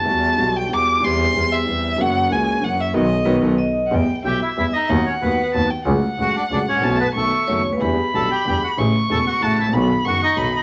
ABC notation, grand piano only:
X:1
M:3/4
L:1/16
Q:1/4=187
K:Bphr
V:1 name="Grand piano" clef=bass
[E,,E,G,B,F]4 [B,,,B,,E,G,B,F]4 [E,,E,G,B,F]4 | [E,,E,G,CG]4 [E,,E,G,CG]4 [E,,E,G,CG]4 | [F,,E,F,^A,^CF]4 [^C,,^C,E,A,CF]4 [F,,E,F,A,CF]4 | [^D,F,B,]2 z2 [D,F,B,]2 [D,F,B,]2 z4 |
[K:Edor] [E,,E,G,B,G]2 z2 [B,,,B,,E,G,B,G]2 z2 [E,,E,G,B,G]2 z2 | [^D,,^D,F,B,F]2 z2 [D,,D,F,B,F]2 z2 [D,,D,F,B,F]2 z2 | [C,,C,F,A,F]2 z2 [C,,C,F,A,F]2 z2 [C,,C,F,A,F]2 z/2 ^G,,,/2 A,,,/2 ^A,,,/2 | [B,,,B,,E,A,B,F]2 z2 [B,,,B,,^D,A,B,F]2 z2 [F,,,F,,D,A,B,F]2 z/2 C,,/2 =D,,/2 ^D,,/2 |
[E,,D,E,G,B,E]2 z2 [B,,,B,,D,G,B,E]2 z2 [E,,D,E,G,B,E]2 z2 | [A,,,A,,C,E,A,E]2 z2 [E,,,E,,C,E,A,E]2 z2 [A,,,A,,C,E,A,E]2 z/2 ^G,,,/2 A,,,/2 ^A,,,/2 | [B,,,B,,^D,F,B,F]2 z2 [F,,,F,,D,F,B,F]2 z2 [B,,,B,,D,F,B,F]2 z2 |]